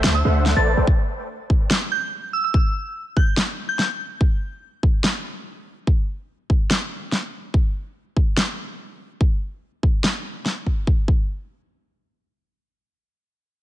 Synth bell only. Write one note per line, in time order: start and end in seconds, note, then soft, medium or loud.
0.15 0.25 E6 medium
0.56 0.71 A6 medium
1.92 2.02 G6 medium
2.33 2.40 E6 medium
2.44 2.50 E6 medium
2.54 2.83 E6 medium
3.17 3.27 G6 medium
3.69 4.00 G6 medium